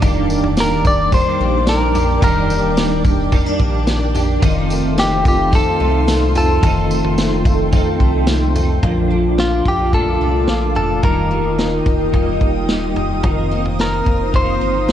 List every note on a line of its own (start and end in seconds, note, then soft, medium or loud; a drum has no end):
0.00 0.42 D#1 loud
0.00 1.12 D#3 medium
0.00 2.22 D#3 medium
0.00 1.12 G3 medium
0.00 0.57 D4 medium
0.00 0.84 G4 medium
0.00 4.38 D5 medium
0.00 4.39 G5 medium
0.00 4.39 D6 medium
0.00 kick loud
0.00 floor tom loud
0.00 tambourine medium
0.04 1.13 A#3 medium
0.04 1.14 D4 medium
0.04 1.14 G4 medium
0.30 1.39 A#3 medium
0.30 tambourine medium
0.43 1.22 D#1 loud
0.43 floor tom medium
0.57 1.11 D4 medium
0.57 0.85 A#4 medium
0.57 snare loud
0.57 tambourine medium
0.85 1.94 G4 medium
0.85 1.14 D5 loud
0.85 kick medium
0.85 floor tom medium
0.85 tambourine medium
1.12 2.00 D#3 medium
1.12 1.95 G3 medium
1.12 1.96 A#3 medium
1.12 1.67 D4 medium
1.12 1.95 D4 medium
1.12 1.92 G4 medium
1.12 1.69 C5 loud
1.12 kick loud
1.12 floor tom medium
1.12 tambourine medium
1.40 2.18 A#1 loud
1.40 2.49 A#3 medium
1.67 2.76 D4 medium
1.67 2.23 A#4 medium
1.67 snare loud
1.67 tambourine medium
1.94 2.23 D4 soft
1.94 2.22 G4 soft
1.94 2.22 G4 medium
1.94 floor tom medium
1.94 tambourine medium
1.99 2.23 A#3 soft
2.20 2.62 D#1 loud
2.20 3.32 D#3 medium
2.20 4.42 D#3 medium
2.20 3.32 G3 medium
2.20 3.04 G4 medium
2.20 3.02 A#4 medium
2.20 kick loud
2.20 floor tom loud
2.20 tambourine medium
2.25 3.32 A#3 medium
2.25 3.33 D4 medium
2.25 3.34 G4 medium
2.50 3.59 A#3 medium
2.50 tambourine medium
2.63 3.42 D#1 loud
2.77 3.32 D4 medium
2.77 snare loud
2.77 tambourine loud
3.04 4.13 G4 medium
3.04 kick loud
3.04 floor tom medium
3.04 tambourine medium
3.32 3.60 D#3 medium
3.32 3.60 G3 medium
3.32 3.61 A#3 medium
3.32 3.46 C4 medium
3.32 3.60 D4 loud
3.32 3.58 G4 loud
3.32 kick loud
3.32 floor tom medium
3.32 tambourine medium
3.46 3.86 D4 medium
3.59 4.39 A#1 medium
3.59 4.48 A#3 medium
3.59 4.15 D4 soft
3.59 4.12 G4 medium
3.59 kick loud
3.64 4.17 A#3 medium
3.87 4.48 D4 medium
3.87 snare loud
3.87 tambourine medium
4.14 4.43 D4 soft
4.14 4.42 G4 medium
4.14 4.43 G4 medium
4.14 floor tom medium
4.14 tambourine medium
4.19 4.42 A#3 soft
4.40 4.82 F1 loud
4.40 6.62 D#3 medium
4.40 5.50 F3 medium
4.40 5.51 C4 medium
4.40 5.25 F4 medium
4.40 8.78 A4 medium
4.40 6.60 F5 medium
4.40 8.79 C6 medium
4.40 kick loud
4.40 floor tom loud
4.40 tambourine medium
4.45 5.52 D#4 medium
4.45 5.54 A4 medium
4.70 5.79 A3 medium
4.70 tambourine medium
4.84 5.62 F1 loud
4.98 5.51 C4 medium
4.98 5.24 G4 loud
4.98 snare loud
4.98 tambourine loud
5.25 6.35 F4 medium
5.25 5.55 G4 loud
5.25 kick loud
5.25 floor tom medium
5.25 tambourine medium
5.50 5.79 F3 medium
5.50 5.80 C4 medium
5.50 6.06 C4 medium
5.50 5.79 D#4 medium
5.50 5.77 A4 medium
5.50 kick loud
5.50 floor tom medium
5.50 tambourine medium
5.55 6.36 A4 loud
5.78 6.59 C2 loud
5.78 6.90 A3 medium
5.78 6.63 D#4 soft
5.78 6.67 A4 medium
5.83 6.62 C4 soft
6.08 7.17 C4 medium
6.08 snare loud
6.08 tambourine medium
6.35 6.63 F4 medium
6.35 8.25 A4 loud
6.35 floor tom medium
6.35 tambourine medium
6.61 7.02 F1 loud
6.61 8.83 D#3 medium
6.61 7.71 F3 medium
6.61 7.72 C4 medium
6.61 7.45 F4 medium
6.61 8.80 G5 medium
6.61 kick loud
6.61 floor tom loud
6.61 tambourine medium
6.66 7.73 D#4 medium
6.66 7.75 A4 medium
6.91 8.00 A3 medium
6.91 tambourine medium
7.04 7.82 F1 loud
7.04 floor tom medium
7.18 7.72 C4 medium
7.18 snare loud
7.18 tambourine medium
7.45 8.55 F4 medium
7.45 kick loud
7.45 floor tom medium
7.45 tambourine medium
7.72 8.60 F3 medium
7.72 8.27 C4 medium
7.72 8.56 C4 medium
7.72 8.56 D#4 medium
7.72 8.55 A4 loud
7.72 kick loud
7.72 floor tom medium
7.72 tambourine medium
8.00 8.79 C2 medium
8.00 9.10 A3 medium
8.00 kick medium
8.27 8.89 C4 medium
8.27 snare loud
8.27 tambourine medium
8.55 8.84 D#4 soft
8.55 9.66 F4 medium
8.55 8.83 A4 medium
8.55 floor tom medium
8.55 tambourine medium
8.59 8.84 C4 soft
8.82 9.62 A#1 loud
8.82 9.10 A#2 medium
8.82 9.10 D3 medium
8.82 11.03 F3 medium
8.82 9.11 F3 medium
8.82 9.11 A#3 medium
8.82 9.09 D4 medium
8.82 13.20 F4 medium
8.82 9.07 A4 medium
8.82 11.01 F5 medium
8.82 11.01 A5 medium
8.82 11.01 D6 medium
8.82 kick loud
8.82 floor tom loud
9.08 9.92 A3 medium
9.08 9.95 A#3 soft
9.08 9.93 D4 medium
9.08 9.92 A4 medium
9.13 9.93 F3 soft
9.38 10.20 D4 soft
9.38 9.67 F4 medium
9.38 snare loud
9.66 10.18 A#1 loud
9.66 10.47 F4 medium
9.66 9.94 G4 medium
9.66 kick medium
9.66 floor tom medium
9.91 11.02 A#2 medium
9.91 11.02 D3 medium
9.91 11.03 F3 medium
9.91 11.09 A3 medium
9.91 10.75 A4 loud
9.91 kick medium
9.91 floor tom medium
9.96 11.04 A#3 medium
9.96 11.04 D4 medium
9.96 11.05 A4 medium
10.20 10.47 C2 medium
10.20 10.74 D4 medium
10.48 10.77 A#1 medium
10.48 11.09 F4 medium
10.48 snare loud
10.75 11.02 F1 medium
10.75 11.09 D4 medium
10.75 11.04 A4 medium
10.75 floor tom medium
11.02 11.82 D#1 loud
11.02 11.30 D#3 medium
11.02 13.23 D#3 medium
11.02 11.31 G3 medium
11.02 11.31 A#3 medium
11.02 11.31 D#4 medium
11.02 11.28 G4 medium
11.02 12.65 A#4 loud
11.02 13.22 D#5 medium
11.02 13.22 G5 medium
11.02 14.92 D#6 medium
11.02 kick loud
11.02 floor tom loud
11.29 12.13 A#3 medium
11.29 12.14 D#4 soft
11.29 12.13 G4 soft
11.34 12.14 A#3 soft
11.59 12.40 D#4 medium
11.59 snare loud
11.86 12.38 D#1 medium
11.86 12.68 G4 medium
11.86 kick medium
11.86 floor tom medium
12.12 13.26 D#3 medium
12.12 12.66 G3 medium
12.12 13.51 A#3 medium
12.12 12.70 A#3 medium
12.12 12.71 D#4 medium
12.12 12.70 G4 medium
12.12 kick medium
12.12 floor tom medium
12.41 12.67 F1 medium
12.41 12.96 D#4 medium
12.41 kick medium
12.68 12.95 D#1 medium
12.68 13.22 G3 medium
12.68 13.24 A#3 medium
12.68 13.24 D#4 medium
12.68 13.29 G4 medium
12.68 snare loud
12.73 13.26 G4 medium
12.95 13.22 D#1 medium
12.95 13.79 D#4 medium
12.95 floor tom medium
13.23 14.02 F1 loud
13.23 14.92 D#3 medium
13.23 13.51 F3 medium
13.23 13.51 C4 medium
13.23 13.51 D#4 medium
13.23 13.49 A#4 medium
13.23 14.92 C5 medium
13.23 14.92 F5 medium
13.23 14.92 A#5 medium
13.23 kick loud
13.23 floor tom loud
13.50 14.33 A#3 medium
13.50 14.33 D#4 soft
13.50 14.35 A#4 medium
13.55 14.32 C4 soft
13.65 floor tom medium
13.79 14.60 C4 medium
13.79 14.35 A#4 medium
13.79 snare loud
14.06 14.59 F1 medium
14.06 14.88 F4 medium
14.06 kick medium
14.06 floor tom medium
14.32 14.86 F3 medium
14.32 14.92 A#3 medium
14.32 14.87 C4 medium
14.32 14.89 D#4 medium
14.32 14.91 A#4 medium
14.32 14.91 C5 loud
14.32 kick medium
14.32 floor tom medium
14.61 14.87 G1 medium
14.61 14.92 C4 medium
14.87 14.92 F1 medium
14.87 14.92 F3 soft
14.87 14.92 C4 medium
14.87 14.92 F4 medium
14.87 snare loud